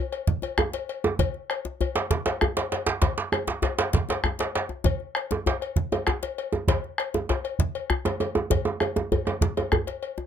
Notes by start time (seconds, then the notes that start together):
0.12 bombo rim, cowbell
0.27 bombo low, djembe slap
0.42 cowbell, djembe tone
0.58 bombo rim, djembe tone, djembe bass
0.73 cowbell, djembe slap
0.89 cowbell
1.04 bombo rim, djembe tone
1.19 bombo low, cowbell, djembe slap, djembe bass
1.34 djembe slap
1.50 bombo rim, cowbell
1.65 djembe slap, djembe tone
1.81 cowbell, djembe bass
1.96 bombo rim, cowbell, djembe slap
2.10 bombo low, djembe slap
2.26 cowbell, djembe slap, djembe tone
2.41 bombo rim, djembe tone, djembe bass
2.57 cowbell, djembe slap
2.72 cowbell, djembe slap
2.87 djembe slap, djembe tone
3.02 bombo rim, bombo low, cowbell, djembe slap, djembe bass
3.18 djembe slap
3.32 bombo rim, cowbell, djembe tone
3.48 bombo rim, djembe slap, djembe tone
3.62 cowbell, djembe slap, djembe bass
3.79 cowbell, djembe slap
3.93 bombo low, djembe slap
4.09 bombo rim, cowbell, djembe slap, djembe tone
4.24 bombo rim, djembe slap, djembe tone, djembe bass
4.39 bombo rim, cowbell, djembe slap
4.55 cowbell, djembe slap
4.69 bombo rim, djembe tone
4.84 bombo low, cowbell, djembe slap, djembe bass
5.00 djembe slap
5.15 bombo rim, cowbell
5.31 djembe slap, djembe tone
5.46 cowbell, djembe slap, djembe bass
5.61 bombo rim, cowbell
5.76 bombo low, djembe slap
5.92 cowbell, djembe tone
6.07 bombo rim, djembe slap, djembe bass
6.23 cowbell, djembe slap
6.38 cowbell
6.53 djembe tone
6.68 bombo low, cowbell, djembe slap, djembe bass
6.84 djembe slap
6.98 bombo rim, cowbell
7.14 djembe slap, djembe tone
7.29 cowbell, djembe slap, djembe bass
7.44 bombo rim, cowbell
7.59 bombo low, djembe slap
7.75 cowbell
7.90 bombo rim, djembe bass
8.05 cowbell, djembe slap, djembe tone
8.20 cowbell, djembe tone
8.35 bombo rim, djembe tone
8.50 bombo low, cowbell, djembe slap, djembe bass
8.65 djembe slap, djembe tone
8.80 bombo rim, cowbell, djembe tone
8.96 djembe slap, djembe tone
9.12 cowbell, djembe bass
9.25 bombo rim, cowbell, djembe tone
9.41 bombo low, djembe slap, djembe tone
9.57 cowbell, djembe tone
9.72 bombo rim, djembe bass
9.87 cowbell, djembe slap
10.03 cowbell
10.18 bombo rim, djembe tone